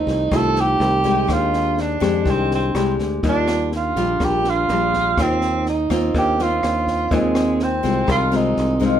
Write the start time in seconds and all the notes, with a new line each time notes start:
Already playing: D#3 A3 C4 D#4 F4
0.07 C2, kick, snare
0.31 C2 D#3 A3 C4 F4, kick, cross-stick, snare
0.36 A4
0.56 snare
0.60 G4
0.80 C2, snare
1.04 G#3 D4 G4, kick, snare
1.27 D#2 D#3 D4, kick, cross-stick, snare
1.33 F4
1.53 snare
1.78 D4, snare
2.00 F2 G#3 D4 G4, kick, cross-stick, snare
2.25 C2 D#3, kick, snare
2.30 C4
2.51 C4, snare
2.75 C2 G#3 D4 G4, cross-stick, snare
2.99 D2, kick, snare
3.23 D#2 D#3 G3 D4 F4, kick, snare
3.29 D4
3.48 cross-stick, snare
3.72 D4, snare
3.77 F4
3.96 A#1 G3 D4 F4, kick, snare
4.20 A#1 A#2, kick, cross-stick, snare
4.25 G4
4.44 snare
4.50 F4
4.68 A#1 G3 D4 F4, snare
4.93 kick, snare
5.17 D#2 D#3 A#3 C4 D#4 F4, kick, cross-stick, snare
5.22 C4
5.41 snare
5.66 D#4, snare
5.90 D#2 A#3 C4 F4, kick, cross-stick, snare
6.14 D#2 D#3 D4 G4, kick, snare
6.39 A#3 C4 F4, snare
6.63 D#2, cross-stick, snare
6.87 kick, snare
7.11 D#2 D#3 G#3 C4 F4, kick, snare
7.15 G#3
7.35 cross-stick, snare
7.59 C4, snare
7.83 C2 G#3 C4 F4, kick, snare
8.07 C2 D#3 F4, kick, cross-stick, snare
8.31 G#3 C4 F4, snare
8.36 D#4
8.56 C2 C4, snare
8.80 G#3 C4 D#4, kick, snare
8.85 F4